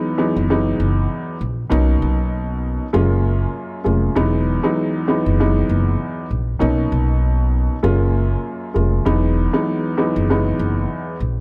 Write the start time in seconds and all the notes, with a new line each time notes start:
Already playing: E2 F#3 G#3 B3 D#4
0.18 E2 F#3 G#3 B3 D#4
0.36 F#1
0.50 E2 F#3 G#3 B3 D#4
0.80 F#1
1.41 A#1
1.70 B1 B2 F#3 A#3 C#4 D#4
2.02 B1
2.93 F#1 F#2 G#3 A#3 C#4 F4
3.84 F1 F#2 G#3 A#3 C#4 F4
4.15 E1 E2 F#3 G#3 B3 D#4
4.63 E2 F#3 G#3 B3 D#4
5.08 E2 F#3 G#3 B3 D#4
5.26 F#1
5.40 E2 F#3 G#3 B3 D#4
5.69 F#1
6.31 A#1
6.59 B1 B2 F#3 A#3 C#4 D#4
6.92 B1
7.83 F#1 F#2 G#3 A#3 C#4 F4
8.74 F1 F#2 G#3 A#3 C#4 F4
9.05 E1 E2 F#3 G#3 B3 D#4
9.53 E2 F#3 G#3 B3 D#4
9.97 E2 F#3 G#3 B3 D#4
10.16 F#1
10.30 E2 F#3 G#3 B3 D#4
10.59 F#1
11.20 A#1